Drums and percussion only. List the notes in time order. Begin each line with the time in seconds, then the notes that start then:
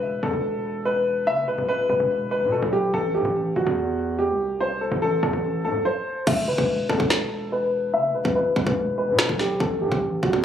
6.27 kick, crash
6.58 kick
6.89 kick
7.00 kick
7.10 snare
8.25 kick
8.56 kick
8.67 kick
9.19 snare
9.29 kick
9.39 snare
9.60 kick
9.92 kick
10.23 kick
10.33 kick